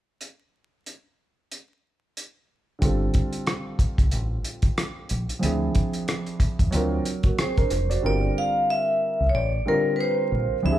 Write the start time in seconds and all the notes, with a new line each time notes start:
0.21 closed hi-hat
0.86 closed hi-hat
1.51 closed hi-hat
2.17 closed hi-hat
2.79 G1 D3 G3 C4, kick, closed hi-hat
2.83 F4 A4
3.14 kick, closed hi-hat
3.33 closed hi-hat
3.47 cross-stick, closed hi-hat
3.79 kick, closed hi-hat
3.98 C2, kick, closed hi-hat
4.11 A1, closed hi-hat
4.44 closed hi-hat
4.62 kick, closed hi-hat
4.78 cross-stick, closed hi-hat
5.09 A#1, closed hi-hat
5.29 closed hi-hat
5.39 D2 F3 C4 D4, closed hi-hat
5.44 E4 G#4
5.75 kick, closed hi-hat
5.93 closed hi-hat
6.08 cross-stick, closed hi-hat
6.26 closed hi-hat
6.40 kick, closed hi-hat
6.59 E2, kick, closed hi-hat
6.71 D2 F#3 C4 D4, closed hi-hat
6.75 F4 A#4
7.05 closed hi-hat
7.23 A#3 F#4, kick, closed hi-hat
7.38 C4 G#4 C5, cross-stick, closed hi-hat
7.57 D4 A#4, kick, closed hi-hat
7.70 F1 C5, cross-stick, closed hi-hat
7.90 F#4 D5, closed hi-hat
8.02 G1 D3 G3 C4 F4 A#4 D5
8.38 F5
8.70 E5
9.20 C2
9.29 C#5
9.34 A1 D5
9.66 D3 G3 C4 F4 A#4
9.96 B4
10.01 C5
10.32 A#1
10.63 D2 F3 C4 D4 E4 G4 E5
10.72 G#4